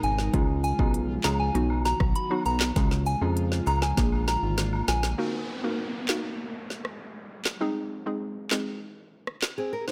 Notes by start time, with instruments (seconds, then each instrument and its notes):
Already playing: analog synth pad B2 G#3 D#4 A#4, synth pluck A#3 B3
0.03 analog synth bass G#1, synth bell G#5, closed hi-hat, cabasa
0.19 snare
0.34 analog synth bass C#2, analog synth pad C#3 F3 F4, synth pluck G#3 C#4 F4 G#4, kick, closed hi-hat, high woodblock
0.64 synth bell G#5, closed hi-hat, cabasa
0.79 analog synth bass B1, synth pluck G#3 C#4 F4 G#4, kick, high woodblock
0.94 closed hi-hat
1.24 analog synth bass C#2, synth pluck G#3 C#4 F4 G#4, synth bell A#5, snare, clap, closed hi-hat, cabasa, high woodblock
1.40 synth bell G#5
1.54 analog synth bass B1, analog synth pad D#3 F#3 B3 F#4, synth pluck F#3 B3 D#4 F#4, closed hi-hat
1.70 high woodblock
1.85 synth bell A#5, snare, closed hi-hat, cabasa
2.00 analog synth bass B1, kick, cross-stick
2.15 synth bell B5, closed hi-hat
2.30 synth pluck F#3 B3 D#4 F#4, high woodblock
2.46 analog synth bass B1, synth bell A#5, closed hi-hat, cabasa
2.60 snare, clap
2.76 analog synth bass C#2, analog synth pad C#3 F3 G#3 F4, synth pluck G#3 C#4 F4 G#4, kick, snare, closed hi-hat, high woodblock
2.91 snare
3.06 synth bell G#5, closed hi-hat, cabasa
3.21 analog synth bass F2, synth pluck G#3 C#4 F4 G#4, high woodblock
3.37 closed hi-hat
3.52 snare
3.67 analog synth bass C#2, synth pluck G#3 C#4 F4 G#4, synth bell A#5, closed hi-hat, cabasa, high woodblock
3.82 synth bell G#5, snare
3.97 analog synth bass A#1, analog synth pad D3 A#3 F4, synth pluck A#3 D4 F4 G#4, kick, snare, closed hi-hat
4.12 high woodblock
4.28 synth bell A#5, snare, closed hi-hat, cabasa
4.43 analog synth bass G#1
4.58 snare, closed hi-hat
4.73 high woodblock
4.88 analog synth bass A#1, synth bell G#5, snare, closed hi-hat, cabasa
5.03 snare
5.18 synth pluck A#3 D#4 F#4 A#4, downlifter
5.64 synth pluck A#3 D#4 F#4 A#4
6.09 synth pluck A#3 D#4 F#4 A#4, snare, clap
6.70 snare
6.85 cross-stick
7.45 snare, clap
7.61 synth pluck G#3 C4 D#4 G#4
8.06 synth pluck G#3 C4 D#4 G#4
8.51 synth pluck G#3 C4 D#4 G#4, snare, clap
9.27 cross-stick
9.42 snare, clap
9.58 nylon-string guitar C4 G#4
9.73 nylon-string guitar A#4
9.88 nylon-string guitar D#4 C5, snare